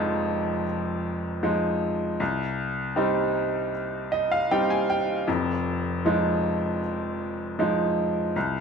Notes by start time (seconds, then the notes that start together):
Already playing: F1 F2 F3 G#3 D#4
1.43 F3 G#3 D#4
2.20 C2
2.96 G3 C4 D#4
4.12 D#5
4.32 F5
4.51 G3 C4 D#4 G5
4.70 G#5
4.90 G5
5.28 F1 F2
6.05 F3 G#3 D#4
7.59 F3 G#3 D#4
8.36 C2